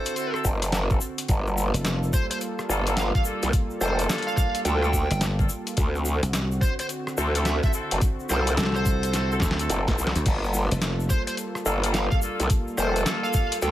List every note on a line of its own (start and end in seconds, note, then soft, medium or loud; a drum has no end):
0.00 1.25 D3 medium
0.00 0.14 C4 loud
0.00 1.24 C4 medium
0.00 0.14 E4 medium
0.00 0.14 F#4 medium
0.00 1.25 F#4 medium
0.00 0.14 A4 loud
0.00 0.35 C5 medium
0.06 closed hi-hat medium
0.06 shaker soft
0.16 0.32 C4 medium
0.16 0.32 E4 medium
0.16 0.32 F#4 medium
0.16 0.32 A4 loud
0.16 closed hi-hat medium
0.16 shaker medium
0.34 0.47 C4 loud
0.34 0.46 E4 medium
0.34 0.47 F#4 medium
0.34 0.47 A4 loud
0.34 cross-stick medium
0.34 shaker soft
0.45 0.99 F#1 loud
0.45 kick medium
0.45 shaker loud
0.62 cross-stick soft
0.62 closed hi-hat medium
0.62 shaker soft
0.72 snare loud
0.72 closed hi-hat medium
0.72 shaker medium
0.90 1.03 C4 medium
0.90 1.03 E4 medium
0.90 1.03 F#4 medium
0.90 1.03 A4 medium
0.90 kick loud
0.90 shaker soft
1.01 shaker loud
1.18 closed hi-hat medium
1.18 shaker soft
1.28 1.72 G1 loud
1.28 5.74 G3 medium
1.28 5.73 A#3 medium
1.28 5.74 F4 medium
1.28 5.73 A4 medium
1.28 kick loud
1.28 closed hi-hat medium
1.28 shaker medium
1.47 shaker soft
1.57 shaker loud
1.74 2.11 F1 loud
1.74 closed hi-hat medium
1.74 shaker soft
1.85 snare loud
1.85 closed hi-hat medium
1.85 shaker medium
2.03 shaker soft
2.13 2.25 C5 medium
2.13 kick loud
2.13 shaker loud
2.31 2.37 C5 medium
2.31 closed hi-hat medium
2.31 shaker soft
2.41 closed hi-hat medium
2.41 shaker medium
2.59 cross-stick soft
2.59 shaker soft
2.69 3.12 G1 loud
2.69 2.83 A#3 loud
2.69 2.82 D4 medium
2.69 2.83 F4 medium
2.69 2.83 A4 loud
2.69 shaker medium
2.87 2.99 A#3 medium
2.87 2.99 D4 medium
2.87 2.99 F4 medium
2.87 2.99 A4 loud
2.87 closed hi-hat medium
2.87 shaker soft
2.97 3.09 F5 medium
2.97 snare loud
2.97 closed hi-hat medium
2.97 shaker medium
3.15 3.24 A#3 medium
3.15 3.24 D4 medium
3.15 3.24 F4 medium
3.15 3.24 A4 medium
3.15 3.22 F5 medium
3.15 kick loud
3.15 shaker soft
3.25 3.51 A#3 medium
3.25 3.51 D4 medium
3.25 3.51 F4 medium
3.25 3.51 A4 loud
3.25 shaker loud
3.43 3.51 C2 loud
3.43 closed hi-hat medium
3.43 shaker soft
3.53 kick loud
3.53 closed hi-hat medium
3.53 shaker medium
3.70 shaker soft
3.81 4.07 F1 medium
3.81 4.63 A#3 loud
3.81 4.63 D4 medium
3.81 4.63 F4 medium
3.81 4.63 A4 loud
3.81 4.02 C5 medium
3.81 cross-stick soft
3.81 shaker loud
3.99 closed hi-hat medium
3.99 shaker soft
4.09 snare loud
4.09 closed hi-hat soft
4.09 shaker medium
4.14 closed hi-hat soft
4.18 closed hi-hat soft
4.22 closed hi-hat soft
4.27 4.35 F5 medium
4.27 shaker soft
4.37 4.58 F5 medium
4.37 kick loud
4.37 shaker medium
4.55 closed hi-hat medium
4.55 shaker soft
4.65 5.08 D2 loud
4.65 4.80 A#3 medium
4.65 4.80 D4 medium
4.65 4.80 F4 medium
4.65 4.80 A4 loud
4.65 5.21 G5 medium
4.65 closed hi-hat medium
4.65 shaker soft
4.82 4.95 A#3 loud
4.82 4.95 D4 medium
4.82 4.95 F4 medium
4.82 4.95 A4 loud
4.82 cross-stick medium
4.82 shaker soft
4.93 kick medium
4.93 shaker medium
5.11 5.48 G1 loud
5.11 cross-stick soft
5.11 closed hi-hat medium
5.11 shaker soft
5.21 snare loud
5.21 closed hi-hat medium
5.21 shaker soft
5.39 5.51 A#3 medium
5.39 5.51 D4 medium
5.39 5.51 F4 medium
5.39 5.51 A4 medium
5.39 kick loud
5.39 shaker soft
5.49 shaker medium
5.67 closed hi-hat medium
5.67 shaker soft
5.77 6.20 D2 loud
5.77 10.22 D3 medium
5.77 10.22 C4 medium
5.77 10.22 F#4 medium
5.77 kick loud
5.77 closed hi-hat medium
5.77 shaker medium
5.95 shaker soft
6.05 shaker medium
6.23 6.60 C2 loud
6.23 closed hi-hat medium
6.23 shaker soft
6.33 snare loud
6.33 closed hi-hat medium
6.33 shaker medium
6.51 shaker soft
6.61 6.73 C5 medium
6.61 kick loud
6.61 shaker medium
6.79 6.86 C5 medium
6.79 closed hi-hat medium
6.79 shaker soft
6.89 closed hi-hat medium
6.89 shaker medium
7.07 cross-stick medium
7.07 shaker soft
7.17 7.61 D2 loud
7.17 7.31 C4 loud
7.17 7.31 E4 medium
7.17 7.31 F#4 medium
7.17 7.31 A4 loud
7.17 shaker medium
7.35 7.48 C4 medium
7.35 7.48 E4 medium
7.35 7.48 F#4 medium
7.35 7.48 A4 loud
7.35 closed hi-hat medium
7.35 shaker soft
7.45 7.57 E5 medium
7.45 snare loud
7.45 closed hi-hat medium
7.45 shaker soft
7.63 7.72 C4 medium
7.63 7.72 E4 medium
7.63 7.72 F#4 medium
7.63 7.72 A4 medium
7.63 7.70 E5 medium
7.63 kick loud
7.63 shaker soft
7.73 7.99 C4 medium
7.73 7.99 E4 medium
7.73 7.99 F#4 medium
7.73 7.99 A4 loud
7.73 shaker medium
7.91 8.00 F#1 loud
7.91 closed hi-hat medium
7.91 shaker soft
8.01 kick loud
8.01 closed hi-hat medium
8.01 shaker medium
8.20 shaker soft
8.29 8.56 C2 loud
8.29 9.11 C4 loud
8.29 9.11 E4 medium
8.29 9.11 F#4 medium
8.29 9.11 A4 loud
8.29 8.51 C5 medium
8.29 cross-stick soft
8.29 shaker medium
8.47 closed hi-hat medium
8.47 shaker soft
8.57 9.40 C2 loud
8.57 snare loud
8.57 closed hi-hat medium
8.57 shaker medium
8.60 snare medium
8.63 snare medium
8.66 snare medium
8.66 snare soft
8.72 9.32 C5 medium
8.72 snare soft
8.72 shaker soft
8.86 kick loud
8.86 shaker medium
9.03 closed hi-hat medium
9.03 shaker soft
9.13 9.29 C4 medium
9.13 9.29 E4 medium
9.13 9.29 F#4 medium
9.13 9.29 A4 loud
9.13 snare medium
9.13 closed hi-hat medium
9.13 shaker medium
9.32 9.40 C4 loud
9.32 9.40 E4 medium
9.32 9.40 F#4 medium
9.32 9.40 A4 loud
9.32 shaker soft
9.40 9.68 D2 loud
9.40 9.57 C4 medium
9.40 9.57 E4 medium
9.40 9.57 F#4 medium
9.40 9.57 A4 medium
9.40 kick medium
9.40 snare medium
9.40 shaker medium
9.51 snare medium
9.59 9.83 C4 medium
9.59 9.83 E4 medium
9.59 9.83 F#4 medium
9.59 9.83 A4 loud
9.59 closed hi-hat medium
9.59 shaker soft
9.70 9.96 F#1 medium
9.70 closed hi-hat medium
9.70 shaker medium
9.88 10.25 C4 medium
9.88 10.25 E4 medium
9.88 10.25 F#4 medium
9.88 10.25 A4 medium
9.88 kick loud
9.88 snare loud
9.88 shaker soft
9.98 10.13 C2 loud
9.98 shaker loud
10.07 snare loud
10.16 10.24 D2 loud
10.16 closed hi-hat medium
10.16 shaker soft
10.26 10.69 G1 loud
10.26 13.71 G3 medium
10.26 13.71 A#3 medium
10.26 13.71 F4 medium
10.26 13.71 A4 medium
10.26 kick loud
10.26 closed hi-hat medium
10.26 crash medium
10.26 shaker soft
10.44 shaker soft
10.54 shaker medium
10.71 11.08 F1 loud
10.71 closed hi-hat medium
10.71 shaker soft
10.82 snare loud
10.82 closed hi-hat medium
10.82 shaker medium
11.00 shaker soft
11.10 11.21 C5 medium
11.10 kick loud
11.10 shaker medium
11.27 11.34 C5 medium
11.27 closed hi-hat medium
11.27 shaker soft
11.37 closed hi-hat medium
11.37 shaker medium
11.55 cross-stick medium
11.55 shaker soft
11.66 12.09 G1 loud
11.66 11.79 A#3 loud
11.66 11.79 D4 medium
11.66 11.79 F4 medium
11.66 11.79 A4 loud
11.66 shaker medium
11.84 11.96 A#3 medium
11.84 11.96 D4 medium
11.84 11.96 F4 medium
11.84 11.96 A4 loud
11.84 closed hi-hat medium
11.84 shaker soft
11.94 12.05 F5 medium
11.94 snare loud
11.94 closed hi-hat medium
11.94 shaker soft
12.10 12.20 A#3 medium
12.10 12.21 D4 medium
12.10 12.20 F4 medium
12.10 12.21 A4 medium
12.10 12.18 F5 medium
12.10 kick loud
12.10 shaker soft
12.22 12.48 A#3 loud
12.22 12.48 D4 medium
12.22 12.48 F4 medium
12.22 12.48 A4 loud
12.22 shaker medium
12.40 12.49 C2 medium
12.40 closed hi-hat medium
12.40 shaker soft
12.50 kick loud
12.50 closed hi-hat medium
12.50 shaker medium
12.68 shaker soft
12.77 13.04 F1 loud
12.77 13.60 A#3 loud
12.77 13.60 D4 medium
12.77 13.60 F4 medium
12.77 13.60 A4 loud
12.77 12.99 C5 medium
12.77 cross-stick soft
12.77 shaker loud
12.96 closed hi-hat medium
12.96 shaker soft
13.06 snare loud
13.06 closed hi-hat medium
13.06 shaker medium
13.23 13.32 F5 medium
13.23 shaker soft
13.33 13.55 F5 medium
13.33 kick loud
13.33 shaker loud
13.52 closed hi-hat medium
13.52 shaker soft
13.62 13.71 D2 loud
13.62 13.71 A#3 medium
13.62 13.71 D4 medium
13.62 13.71 F4 medium
13.62 13.71 A4 loud
13.62 13.71 G5 medium
13.62 closed hi-hat medium
13.62 shaker medium